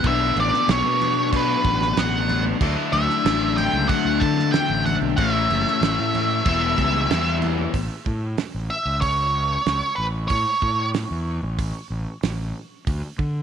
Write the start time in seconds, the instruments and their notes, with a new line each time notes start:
Already playing: transistor combo organ B4
0.03 fingered electric bass B1, overdriven electric guitar B2 F#3 B3 D4, transistor combo organ A3 D4 F#5, kick, crash
0.07 lead electric guitar E5
0.36 fingered electric bass A1, crash, low conga
0.40 lead electric guitar D5
0.54 snare
0.68 fingered electric bass B1, lead electric guitar C#5, snare, crash
0.84 fingered electric bass B2
1.01 crash, low conga
1.33 lead electric guitar B4, kick, crash
1.64 fingered electric bass A1, kick, crash, high conga
1.81 snare, high conga
1.96 fingered electric bass A1, lead electric guitar F#5, snare, crash, low conga
2.29 crash, high conga, low conga
2.45 high conga
2.61 fingered electric bass D2, overdriven electric guitar D3 F#3 A3 D4, transistor combo organ F#3 D4 E4 A4 E5, kick, crash
2.93 fingered electric bass D2, lead electric guitar E5, crash, low conga
3.10 snare
3.25 fingered electric bass A1, snare, crash
3.57 lead electric guitar G5, crash, low conga
3.73 fingered electric bass C#2
3.89 lead electric guitar F#5, kick, crash
4.05 fingered electric bass D2
4.20 fingered electric bass D3, lead electric guitar A5, kick, crash
4.37 snare, high conga
4.52 lead electric guitar G5, snare, crash, low conga
4.70 fingered electric bass A1
4.86 lead electric guitar F#5, crash, high conga, low conga
5.01 fingered electric bass B1, high conga
5.17 fingered electric bass A1, overdriven electric guitar A2 E3 A3 C#4 E4, transistor combo organ A3 C#4 C#5 E5, lead electric guitar E5, kick, crash
5.50 fingered electric bass F#1, crash, low conga
5.67 snare
5.81 fingered electric bass A1, snare, crash
5.99 fingered electric bass A2
6.14 crash, high conga, low conga
6.44 fingered electric bass E1, overdriven electric guitar E3 G3 B3, transistor combo organ G3 F#4 B4, lead electric guitar E5, kick, crash
6.49 overdriven electric guitar E4
6.78 fingered electric bass C#2, kick, crash, high conga
6.95 high conga
7.10 fingered electric bass E2, snare, crash, low conga
7.42 crash, high conga, low conga
7.58 high conga
7.74 fingered electric bass A1, kick, open hi-hat
8.06 fingered electric bass A2, kick
8.38 snare, open hi-hat
8.54 fingered electric bass A1
8.70 lead electric guitar E5
8.85 fingered electric bass C#2
9.01 lead electric guitar C#5, kick, open hi-hat
9.66 fingered electric bass C#2, snare, open hi-hat
9.96 fingered electric bass A1, lead electric guitar B4
10.28 fingered electric bass A2, lead electric guitar C#5, kick, open hi-hat
10.62 fingered electric bass A2, kick
10.94 snare, open hi-hat
11.11 fingered electric bass E2
11.43 fingered electric bass A1
11.59 kick, open hi-hat
11.90 fingered electric bass A1
12.23 fingered electric bass A1, snare, open hi-hat
12.87 fingered electric bass D2, kick, open hi-hat
13.19 fingered electric bass D3, kick